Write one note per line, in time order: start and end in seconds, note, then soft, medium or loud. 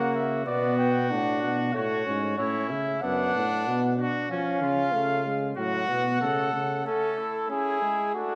0.00 0.45 C#3 medium
0.00 0.45 A#3 loud
0.00 0.48 F#4 medium
0.00 0.17 F#5 medium
0.15 0.45 E5 medium
0.46 1.13 B2 medium
0.46 1.09 B3 medium
0.46 1.73 F#4 medium
0.46 0.78 D5 medium
0.78 1.12 G5 medium
1.10 1.45 A2 medium
1.10 1.73 D4 medium
1.10 1.42 F#5 medium
1.42 1.74 B2 medium
1.42 1.75 F#5 medium
1.74 2.06 A2 medium
1.74 2.05 A3 medium
1.74 2.38 F#4 medium
1.74 2.37 C#5 medium
2.06 2.38 G#2 medium
2.06 2.38 C#4 medium
2.38 2.73 A2 medium
2.38 3.01 C#4 medium
2.38 3.01 E4 medium
2.38 2.69 C#5 medium
2.69 3.02 C#3 medium
2.69 3.02 E5 medium
3.01 3.34 F#2 medium
3.01 3.43 B3 medium
3.01 3.82 D4 medium
3.01 4.01 F#5 medium
3.35 3.69 A2 medium
3.67 4.08 B2 medium
3.67 4.00 B3 medium
3.98 4.31 D4 medium
3.98 4.29 F#4 medium
4.29 4.63 F3 medium
4.29 4.95 C#4 loud
4.29 4.62 C#4 medium
4.29 5.53 F5 medium
4.62 4.93 C#3 medium
4.62 5.29 F4 medium
4.93 5.56 C#3 medium
4.93 5.27 A3 medium
5.25 5.56 G#3 medium
5.57 5.88 A2 medium
5.57 5.90 F#3 medium
5.57 6.17 F#4 medium
5.57 6.84 F#5 medium
5.88 6.21 B2 medium
5.88 6.22 B3 medium
6.21 6.53 C#3 medium
6.21 6.52 A3 medium
6.21 6.85 A4 medium
6.53 6.85 C#3 medium
6.53 6.84 A3 medium
6.85 7.46 A3 medium
6.85 7.20 C#4 medium
6.85 7.47 A4 loud
7.18 7.50 E4 medium
7.49 7.81 C#4 medium
7.49 8.14 E4 medium
7.49 8.14 G#4 loud
7.82 8.16 G#3 medium
8.14 8.35 A3 medium
8.14 8.35 D4 medium
8.14 8.35 F#4 loud